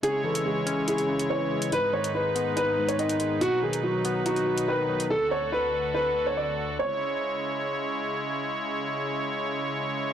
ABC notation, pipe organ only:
X:1
M:4/4
L:1/8
Q:1/4=142
K:C#m
V:1 name="Pipe organ"
[Ec]8 | [DB]8- | [DB]8 | [FA]8 |
[C,G,Ec]8- | [C,G,Ec]8 |]
V:2 name="Pipe organ" clef=bass
[C,G,]8 | [G,,G,]8 | [B,,F,]8 | [=D,,=D,]8 |
z8 | z8 |]